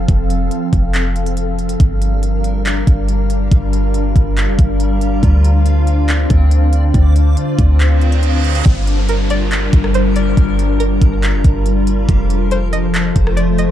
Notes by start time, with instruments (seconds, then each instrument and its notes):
Already playing: ambient pad F3 C4 A4 F5
0.08 808-style bass F1, kick, closed hi-hat
0.30 closed hi-hat
0.51 closed hi-hat
0.73 808-style bass F1, kick, closed hi-hat
0.94 clap, closed hi-hat
1.16 closed hi-hat
1.26 closed hi-hat
1.37 closed hi-hat
1.59 closed hi-hat
1.69 closed hi-hat
1.80 808-style bass G1, synth texture G3 F4 A#4, ambient pad G3 D4 A#4 F5, kick, closed hi-hat
2.02 closed hi-hat
2.23 closed hi-hat
2.44 closed hi-hat
2.65 clap, closed hi-hat
2.87 808-style bass G1, kick, closed hi-hat
3.08 closed hi-hat
3.30 closed hi-hat
3.52 808-style bass G1, kick, closed hi-hat
3.73 closed hi-hat
3.94 closed hi-hat
4.16 808-style bass G1, kick, closed hi-hat
4.37 clap, closed hi-hat
4.48 808-style bass F1
4.59 808-style bass G1, kick, closed hi-hat
4.80 closed hi-hat
5.01 closed hi-hat
5.23 808-style bass D2, ambient pad D3 C5, synth texture C4 D5, kick, closed hi-hat
5.44 closed hi-hat
5.66 closed hi-hat
5.87 closed hi-hat
6.08 clap, closed hi-hat
6.30 808-style bass D2, kick, closed hi-hat
6.51 closed hi-hat
6.73 closed hi-hat
6.94 808-style bass D2, kick, closed hi-hat
7.16 closed hi-hat
7.37 closed hi-hat
7.59 808-style bass D2, kick, closed hi-hat
7.80 clap, closed hi-hat, reverse cymbal
8.01 closed hi-hat
8.12 closed hi-hat
8.23 closed hi-hat
8.44 closed hi-hat
8.55 closed hi-hat
8.66 808-style bass G1, ambient pad G3 D4 F4 A#4, synth texture G3 F4 A#4, kick, closed hi-hat, downlifter
8.87 closed hi-hat
9.09 synth pluck A#4, closed hi-hat
9.30 synth pluck D5, closed hi-hat
9.51 clap, closed hi-hat
9.73 808-style bass G1, kick, closed hi-hat
9.84 cross-stick
9.94 synth pluck C5, closed hi-hat
10.16 synth pluck D5, closed hi-hat
10.37 808-style bass G1, kick, closed hi-hat
10.59 closed hi-hat
10.80 synth pluck A#4, closed hi-hat
11.01 808-style bass G1, kick, closed hi-hat
11.23 clap, closed hi-hat
11.34 808-style bass F1
11.44 808-style bass G1, kick, closed hi-hat
11.66 closed hi-hat
11.87 closed hi-hat
12.08 808-style bass F1, ambient pad F3 A4 C5, synth texture A3 C5, kick, closed hi-hat
12.30 closed hi-hat
12.51 synth pluck C5, closed hi-hat
12.73 synth pluck D#5, closed hi-hat
12.94 clap, closed hi-hat
13.16 808-style bass F1, kick, closed hi-hat
13.27 cross-stick
13.37 synth pluck D5, closed hi-hat
13.58 synth pluck D#5, closed hi-hat